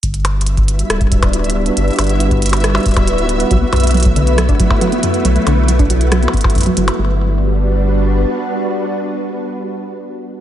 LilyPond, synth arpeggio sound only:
\new Staff \with { instrumentName = "Synth arpeggio sound" } { \clef bass \time 4/4 \key g \major \tempo 4 = 138 r1 | r1 | fis16 b16 fis,16 r16 fis16 fis16 d16 r16 fis16 d'16 fis16 r16 fis16 b16 fis,16 r16 | fis16 fis16 d16 r16 fis16 d'16 fis16 r16 fis16 b16 b16 r16 fis,16 fis16 fis16 r16 |
g8 r2. r8 | r1 | }